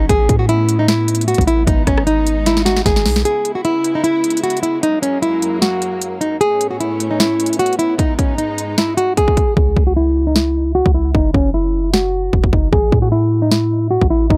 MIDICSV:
0, 0, Header, 1, 5, 480
1, 0, Start_track
1, 0, Tempo, 394737
1, 114, Time_signature, 4, 2, 24, 8
1, 17476, End_track
2, 0, Start_track
2, 0, Title_t, "Nylon-string guitar"
2, 0, Program_c, 0, 24
2, 113, Note_on_c, 0, 68, 99
2, 459, Note_off_c, 0, 68, 0
2, 475, Note_on_c, 0, 66, 80
2, 563, Note_off_c, 0, 66, 0
2, 595, Note_on_c, 0, 64, 81
2, 940, Note_off_c, 0, 64, 0
2, 962, Note_on_c, 0, 63, 74
2, 1047, Note_off_c, 0, 63, 0
2, 1075, Note_on_c, 0, 64, 86
2, 1526, Note_off_c, 0, 64, 0
2, 1554, Note_on_c, 0, 66, 84
2, 1735, Note_off_c, 0, 66, 0
2, 1792, Note_on_c, 0, 64, 85
2, 1975, Note_off_c, 0, 64, 0
2, 2029, Note_on_c, 0, 63, 105
2, 2212, Note_off_c, 0, 63, 0
2, 2274, Note_on_c, 0, 61, 84
2, 2455, Note_off_c, 0, 61, 0
2, 2514, Note_on_c, 0, 63, 82
2, 2965, Note_off_c, 0, 63, 0
2, 2999, Note_on_c, 0, 64, 92
2, 3179, Note_off_c, 0, 64, 0
2, 3228, Note_on_c, 0, 66, 81
2, 3412, Note_off_c, 0, 66, 0
2, 3476, Note_on_c, 0, 68, 86
2, 3926, Note_off_c, 0, 68, 0
2, 3955, Note_on_c, 0, 68, 97
2, 4300, Note_off_c, 0, 68, 0
2, 4319, Note_on_c, 0, 66, 76
2, 4405, Note_off_c, 0, 66, 0
2, 4436, Note_on_c, 0, 64, 82
2, 4780, Note_off_c, 0, 64, 0
2, 4806, Note_on_c, 0, 63, 80
2, 4889, Note_off_c, 0, 63, 0
2, 4909, Note_on_c, 0, 64, 77
2, 5363, Note_off_c, 0, 64, 0
2, 5393, Note_on_c, 0, 66, 79
2, 5575, Note_off_c, 0, 66, 0
2, 5626, Note_on_c, 0, 64, 80
2, 5811, Note_off_c, 0, 64, 0
2, 5875, Note_on_c, 0, 63, 106
2, 6056, Note_off_c, 0, 63, 0
2, 6109, Note_on_c, 0, 61, 78
2, 6293, Note_off_c, 0, 61, 0
2, 6351, Note_on_c, 0, 64, 90
2, 6804, Note_off_c, 0, 64, 0
2, 6831, Note_on_c, 0, 66, 84
2, 7509, Note_off_c, 0, 66, 0
2, 7550, Note_on_c, 0, 63, 85
2, 7733, Note_off_c, 0, 63, 0
2, 7792, Note_on_c, 0, 68, 94
2, 8138, Note_off_c, 0, 68, 0
2, 8154, Note_on_c, 0, 66, 77
2, 8242, Note_off_c, 0, 66, 0
2, 8273, Note_on_c, 0, 64, 82
2, 8619, Note_off_c, 0, 64, 0
2, 8641, Note_on_c, 0, 63, 70
2, 8727, Note_off_c, 0, 63, 0
2, 8753, Note_on_c, 0, 64, 81
2, 9205, Note_off_c, 0, 64, 0
2, 9233, Note_on_c, 0, 66, 78
2, 9415, Note_off_c, 0, 66, 0
2, 9470, Note_on_c, 0, 64, 78
2, 9653, Note_off_c, 0, 64, 0
2, 9708, Note_on_c, 0, 63, 96
2, 9892, Note_off_c, 0, 63, 0
2, 9954, Note_on_c, 0, 61, 80
2, 10136, Note_off_c, 0, 61, 0
2, 10193, Note_on_c, 0, 63, 76
2, 10645, Note_off_c, 0, 63, 0
2, 10680, Note_on_c, 0, 64, 84
2, 10859, Note_off_c, 0, 64, 0
2, 10911, Note_on_c, 0, 66, 79
2, 11094, Note_off_c, 0, 66, 0
2, 11159, Note_on_c, 0, 68, 81
2, 11608, Note_off_c, 0, 68, 0
2, 11636, Note_on_c, 0, 68, 104
2, 11981, Note_off_c, 0, 68, 0
2, 11999, Note_on_c, 0, 66, 80
2, 12085, Note_off_c, 0, 66, 0
2, 12117, Note_on_c, 0, 64, 91
2, 12461, Note_off_c, 0, 64, 0
2, 12487, Note_on_c, 0, 63, 80
2, 12570, Note_off_c, 0, 63, 0
2, 12590, Note_on_c, 0, 64, 83
2, 13043, Note_off_c, 0, 64, 0
2, 13071, Note_on_c, 0, 66, 83
2, 13254, Note_off_c, 0, 66, 0
2, 13309, Note_on_c, 0, 64, 85
2, 13492, Note_off_c, 0, 64, 0
2, 13553, Note_on_c, 0, 63, 110
2, 13735, Note_off_c, 0, 63, 0
2, 13788, Note_on_c, 0, 61, 81
2, 13972, Note_off_c, 0, 61, 0
2, 14033, Note_on_c, 0, 64, 87
2, 14485, Note_off_c, 0, 64, 0
2, 14511, Note_on_c, 0, 66, 85
2, 15189, Note_off_c, 0, 66, 0
2, 15232, Note_on_c, 0, 63, 89
2, 15414, Note_off_c, 0, 63, 0
2, 15473, Note_on_c, 0, 68, 99
2, 15819, Note_off_c, 0, 68, 0
2, 15833, Note_on_c, 0, 66, 78
2, 15921, Note_off_c, 0, 66, 0
2, 15951, Note_on_c, 0, 64, 83
2, 16298, Note_off_c, 0, 64, 0
2, 16319, Note_on_c, 0, 63, 75
2, 16405, Note_off_c, 0, 63, 0
2, 16434, Note_on_c, 0, 64, 83
2, 16885, Note_off_c, 0, 64, 0
2, 16909, Note_on_c, 0, 66, 83
2, 17093, Note_off_c, 0, 66, 0
2, 17150, Note_on_c, 0, 64, 82
2, 17333, Note_off_c, 0, 64, 0
2, 17387, Note_on_c, 0, 63, 100
2, 17476, Note_off_c, 0, 63, 0
2, 17476, End_track
3, 0, Start_track
3, 0, Title_t, "String section"
3, 0, Program_c, 1, 48
3, 0, Note_on_c, 1, 61, 76
3, 118, Note_on_c, 1, 57, 84
3, 119, Note_on_c, 1, 59, 76
3, 1996, Note_off_c, 1, 61, 0
3, 2017, Note_off_c, 1, 57, 0
3, 2033, Note_on_c, 1, 63, 89
3, 2034, Note_on_c, 1, 56, 84
3, 3918, Note_off_c, 1, 59, 0
3, 3934, Note_off_c, 1, 63, 0
3, 3935, Note_off_c, 1, 56, 0
3, 3953, Note_on_c, 1, 64, 85
3, 3954, Note_on_c, 1, 49, 78
3, 3954, Note_on_c, 1, 56, 71
3, 3954, Note_on_c, 1, 59, 74
3, 5855, Note_off_c, 1, 49, 0
3, 5855, Note_off_c, 1, 59, 0
3, 5855, Note_off_c, 1, 64, 0
3, 5876, Note_on_c, 1, 42, 79
3, 5877, Note_on_c, 1, 54, 73
3, 5877, Note_on_c, 1, 58, 87
3, 7756, Note_off_c, 1, 56, 0
3, 7776, Note_off_c, 1, 42, 0
3, 7776, Note_off_c, 1, 58, 0
3, 7777, Note_off_c, 1, 54, 0
3, 7792, Note_on_c, 1, 45, 83
3, 7792, Note_on_c, 1, 59, 74
3, 7793, Note_on_c, 1, 57, 73
3, 7793, Note_on_c, 1, 61, 89
3, 9694, Note_off_c, 1, 45, 0
3, 9694, Note_off_c, 1, 57, 0
3, 9695, Note_off_c, 1, 61, 0
3, 9714, Note_on_c, 1, 44, 77
3, 9714, Note_on_c, 1, 63, 89
3, 9715, Note_on_c, 1, 56, 74
3, 11595, Note_off_c, 1, 59, 0
3, 11615, Note_off_c, 1, 44, 0
3, 11615, Note_off_c, 1, 63, 0
3, 11616, Note_off_c, 1, 56, 0
3, 17476, End_track
4, 0, Start_track
4, 0, Title_t, "808-style bass"
4, 0, Program_c, 2, 38
4, 115, Note_on_c, 2, 33, 119
4, 345, Note_off_c, 2, 33, 0
4, 355, Note_on_c, 2, 45, 106
4, 1633, Note_off_c, 2, 45, 0
4, 1682, Note_on_c, 2, 33, 106
4, 2021, Note_off_c, 2, 33, 0
4, 2034, Note_on_c, 2, 32, 114
4, 2265, Note_off_c, 2, 32, 0
4, 2275, Note_on_c, 2, 32, 106
4, 3427, Note_off_c, 2, 32, 0
4, 3475, Note_on_c, 2, 32, 105
4, 3714, Note_on_c, 2, 35, 108
4, 3732, Note_off_c, 2, 32, 0
4, 3942, Note_off_c, 2, 35, 0
4, 11634, Note_on_c, 2, 37, 112
4, 11865, Note_off_c, 2, 37, 0
4, 11875, Note_on_c, 2, 37, 105
4, 13153, Note_off_c, 2, 37, 0
4, 13202, Note_on_c, 2, 37, 103
4, 13541, Note_off_c, 2, 37, 0
4, 13554, Note_on_c, 2, 30, 110
4, 13785, Note_off_c, 2, 30, 0
4, 13795, Note_on_c, 2, 30, 104
4, 14947, Note_off_c, 2, 30, 0
4, 14995, Note_on_c, 2, 28, 104
4, 15117, Note_off_c, 2, 28, 0
4, 15122, Note_on_c, 2, 30, 104
4, 15230, Note_off_c, 2, 30, 0
4, 15235, Note_on_c, 2, 30, 104
4, 15465, Note_off_c, 2, 30, 0
4, 15474, Note_on_c, 2, 33, 117
4, 15705, Note_off_c, 2, 33, 0
4, 15715, Note_on_c, 2, 45, 106
4, 16993, Note_off_c, 2, 45, 0
4, 17042, Note_on_c, 2, 33, 102
4, 17381, Note_off_c, 2, 33, 0
4, 17394, Note_on_c, 2, 32, 112
4, 17476, Note_off_c, 2, 32, 0
4, 17476, End_track
5, 0, Start_track
5, 0, Title_t, "Drums"
5, 115, Note_on_c, 9, 36, 116
5, 115, Note_on_c, 9, 42, 90
5, 236, Note_off_c, 9, 36, 0
5, 237, Note_off_c, 9, 42, 0
5, 355, Note_on_c, 9, 36, 88
5, 355, Note_on_c, 9, 42, 86
5, 476, Note_off_c, 9, 42, 0
5, 477, Note_off_c, 9, 36, 0
5, 595, Note_on_c, 9, 42, 68
5, 717, Note_off_c, 9, 42, 0
5, 834, Note_on_c, 9, 42, 77
5, 956, Note_off_c, 9, 42, 0
5, 1075, Note_on_c, 9, 38, 119
5, 1075, Note_on_c, 9, 42, 71
5, 1196, Note_off_c, 9, 38, 0
5, 1197, Note_off_c, 9, 42, 0
5, 1315, Note_on_c, 9, 42, 88
5, 1395, Note_off_c, 9, 42, 0
5, 1395, Note_on_c, 9, 42, 78
5, 1475, Note_off_c, 9, 42, 0
5, 1475, Note_on_c, 9, 42, 71
5, 1556, Note_off_c, 9, 42, 0
5, 1556, Note_on_c, 9, 42, 67
5, 1635, Note_off_c, 9, 42, 0
5, 1635, Note_on_c, 9, 42, 58
5, 1682, Note_on_c, 9, 36, 101
5, 1715, Note_off_c, 9, 42, 0
5, 1715, Note_on_c, 9, 42, 52
5, 1796, Note_off_c, 9, 42, 0
5, 1796, Note_on_c, 9, 42, 69
5, 1804, Note_off_c, 9, 36, 0
5, 1917, Note_off_c, 9, 42, 0
5, 2035, Note_on_c, 9, 36, 114
5, 2035, Note_on_c, 9, 42, 89
5, 2157, Note_off_c, 9, 36, 0
5, 2157, Note_off_c, 9, 42, 0
5, 2275, Note_on_c, 9, 36, 91
5, 2275, Note_on_c, 9, 37, 70
5, 2275, Note_on_c, 9, 42, 83
5, 2396, Note_off_c, 9, 37, 0
5, 2397, Note_off_c, 9, 36, 0
5, 2397, Note_off_c, 9, 42, 0
5, 2403, Note_on_c, 9, 37, 98
5, 2516, Note_on_c, 9, 42, 67
5, 2524, Note_off_c, 9, 37, 0
5, 2637, Note_off_c, 9, 42, 0
5, 2755, Note_on_c, 9, 42, 74
5, 2877, Note_off_c, 9, 42, 0
5, 2995, Note_on_c, 9, 38, 64
5, 2995, Note_on_c, 9, 42, 71
5, 3117, Note_off_c, 9, 38, 0
5, 3117, Note_off_c, 9, 42, 0
5, 3123, Note_on_c, 9, 38, 64
5, 3235, Note_off_c, 9, 38, 0
5, 3235, Note_on_c, 9, 38, 77
5, 3235, Note_on_c, 9, 42, 82
5, 3357, Note_off_c, 9, 38, 0
5, 3357, Note_off_c, 9, 42, 0
5, 3363, Note_on_c, 9, 38, 70
5, 3475, Note_on_c, 9, 36, 105
5, 3476, Note_off_c, 9, 38, 0
5, 3476, Note_on_c, 9, 38, 96
5, 3476, Note_on_c, 9, 42, 92
5, 3597, Note_off_c, 9, 36, 0
5, 3597, Note_off_c, 9, 38, 0
5, 3597, Note_off_c, 9, 42, 0
5, 3603, Note_on_c, 9, 38, 89
5, 3716, Note_off_c, 9, 38, 0
5, 3716, Note_on_c, 9, 38, 110
5, 3716, Note_on_c, 9, 46, 68
5, 3838, Note_off_c, 9, 38, 0
5, 3838, Note_off_c, 9, 46, 0
5, 3843, Note_on_c, 9, 38, 100
5, 3955, Note_on_c, 9, 42, 85
5, 3964, Note_off_c, 9, 38, 0
5, 4077, Note_off_c, 9, 42, 0
5, 4195, Note_on_c, 9, 42, 79
5, 4317, Note_off_c, 9, 42, 0
5, 4434, Note_on_c, 9, 42, 63
5, 4556, Note_off_c, 9, 42, 0
5, 4674, Note_on_c, 9, 42, 73
5, 4796, Note_off_c, 9, 42, 0
5, 4915, Note_on_c, 9, 42, 66
5, 5036, Note_off_c, 9, 42, 0
5, 5154, Note_on_c, 9, 42, 79
5, 5234, Note_off_c, 9, 42, 0
5, 5234, Note_on_c, 9, 42, 74
5, 5314, Note_off_c, 9, 42, 0
5, 5314, Note_on_c, 9, 42, 65
5, 5394, Note_off_c, 9, 42, 0
5, 5394, Note_on_c, 9, 42, 63
5, 5473, Note_off_c, 9, 42, 0
5, 5473, Note_on_c, 9, 42, 55
5, 5554, Note_off_c, 9, 42, 0
5, 5554, Note_on_c, 9, 42, 50
5, 5634, Note_off_c, 9, 42, 0
5, 5634, Note_on_c, 9, 42, 64
5, 5755, Note_off_c, 9, 42, 0
5, 5875, Note_on_c, 9, 42, 86
5, 5996, Note_off_c, 9, 42, 0
5, 6115, Note_on_c, 9, 42, 78
5, 6237, Note_off_c, 9, 42, 0
5, 6355, Note_on_c, 9, 42, 63
5, 6477, Note_off_c, 9, 42, 0
5, 6595, Note_on_c, 9, 42, 73
5, 6717, Note_off_c, 9, 42, 0
5, 6835, Note_on_c, 9, 38, 116
5, 6835, Note_on_c, 9, 42, 66
5, 6956, Note_off_c, 9, 38, 0
5, 6957, Note_off_c, 9, 42, 0
5, 7075, Note_on_c, 9, 42, 77
5, 7197, Note_off_c, 9, 42, 0
5, 7315, Note_on_c, 9, 42, 87
5, 7436, Note_off_c, 9, 42, 0
5, 7555, Note_on_c, 9, 42, 63
5, 7677, Note_off_c, 9, 42, 0
5, 7795, Note_on_c, 9, 42, 83
5, 7916, Note_off_c, 9, 42, 0
5, 8035, Note_on_c, 9, 42, 81
5, 8157, Note_off_c, 9, 42, 0
5, 8275, Note_on_c, 9, 42, 61
5, 8397, Note_off_c, 9, 42, 0
5, 8515, Note_on_c, 9, 42, 71
5, 8636, Note_off_c, 9, 42, 0
5, 8755, Note_on_c, 9, 38, 115
5, 8755, Note_on_c, 9, 42, 68
5, 8876, Note_off_c, 9, 38, 0
5, 8877, Note_off_c, 9, 42, 0
5, 8995, Note_on_c, 9, 42, 80
5, 9075, Note_off_c, 9, 42, 0
5, 9075, Note_on_c, 9, 42, 75
5, 9155, Note_off_c, 9, 42, 0
5, 9155, Note_on_c, 9, 42, 67
5, 9235, Note_off_c, 9, 42, 0
5, 9235, Note_on_c, 9, 42, 63
5, 9316, Note_off_c, 9, 42, 0
5, 9316, Note_on_c, 9, 42, 57
5, 9396, Note_off_c, 9, 42, 0
5, 9396, Note_on_c, 9, 42, 48
5, 9476, Note_off_c, 9, 42, 0
5, 9476, Note_on_c, 9, 42, 63
5, 9598, Note_off_c, 9, 42, 0
5, 9715, Note_on_c, 9, 36, 111
5, 9715, Note_on_c, 9, 42, 83
5, 9836, Note_off_c, 9, 36, 0
5, 9837, Note_off_c, 9, 42, 0
5, 9955, Note_on_c, 9, 36, 90
5, 9956, Note_on_c, 9, 42, 78
5, 10077, Note_off_c, 9, 36, 0
5, 10077, Note_off_c, 9, 42, 0
5, 10195, Note_on_c, 9, 42, 63
5, 10317, Note_off_c, 9, 42, 0
5, 10435, Note_on_c, 9, 42, 74
5, 10557, Note_off_c, 9, 42, 0
5, 10674, Note_on_c, 9, 38, 113
5, 10675, Note_on_c, 9, 42, 67
5, 10796, Note_off_c, 9, 38, 0
5, 10796, Note_off_c, 9, 42, 0
5, 10916, Note_on_c, 9, 42, 78
5, 11037, Note_off_c, 9, 42, 0
5, 11155, Note_on_c, 9, 36, 99
5, 11155, Note_on_c, 9, 42, 90
5, 11276, Note_off_c, 9, 36, 0
5, 11277, Note_off_c, 9, 42, 0
5, 11282, Note_on_c, 9, 36, 94
5, 11394, Note_on_c, 9, 42, 66
5, 11395, Note_off_c, 9, 36, 0
5, 11395, Note_on_c, 9, 36, 105
5, 11516, Note_off_c, 9, 42, 0
5, 11517, Note_off_c, 9, 36, 0
5, 11634, Note_on_c, 9, 36, 109
5, 11756, Note_off_c, 9, 36, 0
5, 11875, Note_on_c, 9, 36, 89
5, 11996, Note_off_c, 9, 36, 0
5, 12594, Note_on_c, 9, 38, 116
5, 12715, Note_off_c, 9, 38, 0
5, 13201, Note_on_c, 9, 36, 94
5, 13323, Note_off_c, 9, 36, 0
5, 13554, Note_on_c, 9, 36, 113
5, 13676, Note_off_c, 9, 36, 0
5, 13795, Note_on_c, 9, 36, 88
5, 13916, Note_off_c, 9, 36, 0
5, 14514, Note_on_c, 9, 38, 121
5, 14636, Note_off_c, 9, 38, 0
5, 14995, Note_on_c, 9, 36, 99
5, 15116, Note_off_c, 9, 36, 0
5, 15122, Note_on_c, 9, 36, 98
5, 15235, Note_off_c, 9, 36, 0
5, 15235, Note_on_c, 9, 36, 108
5, 15357, Note_off_c, 9, 36, 0
5, 15475, Note_on_c, 9, 36, 111
5, 15596, Note_off_c, 9, 36, 0
5, 15715, Note_on_c, 9, 36, 88
5, 15837, Note_off_c, 9, 36, 0
5, 16434, Note_on_c, 9, 38, 113
5, 16556, Note_off_c, 9, 38, 0
5, 17042, Note_on_c, 9, 36, 97
5, 17163, Note_off_c, 9, 36, 0
5, 17394, Note_on_c, 9, 36, 113
5, 17476, Note_off_c, 9, 36, 0
5, 17476, End_track
0, 0, End_of_file